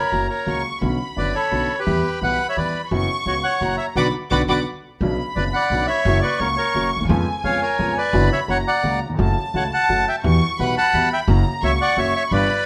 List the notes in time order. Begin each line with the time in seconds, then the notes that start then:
Already playing: A#4 C#5 B5
0.12 F#1 F#2 C#3 F#3 A#3 F#4 A#5
0.30 A#4 C#5
0.46 C#2 C#3 F#3 A#3 F#4 C#6
0.81 B1 B2 D3 B3 C#4 F#4 B5
1.16 F#1 F#2 D3 B3 C#4 F#4 B4 D5
1.35 A4 C#5
1.51 B1 B2 D3 B3 C#4 F#4
1.79 G4 B4
1.86 E2 E3 G3 B3 G4 B5
2.21 B1 B2 E3 G3 B3 G4 B4 F#5
2.49 C#5 E5
2.57 E2 E3 G3 B3 G4 B4 D5
2.91 F#1 F#2 C#3 F#3 B3 F#4 C#6
3.26 C#2 C#3 F#3 B3 F#4 C#5
3.43 C#5 F#5
3.61 F#1 F#2 C#3 F#3 A#3 F#4 A#5
3.78 C#5 E5
3.95 B1 D3 F#3 B3 F#4 B4 D5 F#5 B5 D6
4.30 B1 D3 F#3 B3 F#4 B4 D5 F#5 B5 D6
4.48 B1 D3 F#3 B3 F#4 B4 D5 F#5 B5 D6
5.01 B1 B2 C#3 F#3 B3 D4 B5
5.36 F#1 F#2 C#3 F#3 B3 D4 B4 D5
5.54 D5 F#5
5.70 B1 B2 C#3 F#3 B3 D4
5.87 C#5 E5
6.05 F#1 F#2 C#3 F#3 A#3 F#4 C#6
6.21 B4 D5
6.38 C#2 C#3 F#3 A#3 F#4 A#4 C#5
6.56 A#4 C#5
6.75 F#1 F#2 C#3 F#3 A#3 F#4
6.96 D2
7.00 D#2
7.05 E2
7.09 F2 C#3 F3 G#3 B3 F4 G#5
7.43 F2 C#3 F3 G#3 B3 F4 C#5 F5
7.62 A#4 C#5
7.79 F2 C#3 F3 G#3 B3 F4
7.98 B4 D5
8.13 F#1 F#2 D3 F#3 B3 F#4 B5
8.32 C#5 E5
8.48 F#1 F#2 C#3 F#3 A#3 F#4 C#5 F#5 A#5
8.68 D5 F#5
8.83 C#2 C#3 F#3 A#3 F#4
9.06 D#2 E2
9.14 F2 C#3
9.18 F#1 F#2 F#3 A3 F#4 A5
9.54 C#2 C#3 F#3 A3 F#4 C#5 F#5
9.74 F#5 A5
9.89 F#1 F#2 C#3 F#3 A3 F#4
10.08 E5 G5
10.23 E2 E3 G3 B3 F#4 C#6
10.59 B1 B2 E3 G3 B3 F#4 B4 F#5 B5
10.78 F#5 A5
10.94 E2 E3 G3 B3 F#4
11.13 E5 G5
11.28 F#1 F#2 C#3 F#3 A#3 F#4 A#5
11.62 C#2 C#3 F#3 A#3 F#4 C#5 E5 C#6
11.81 D5 F#5
11.97 F#1 F#2 C#3 F#3 A#3 F#4 C#5 E5
12.16 C#5 E5
12.30 G1 G2 D3 G3 B3 G4 B4 D5 B5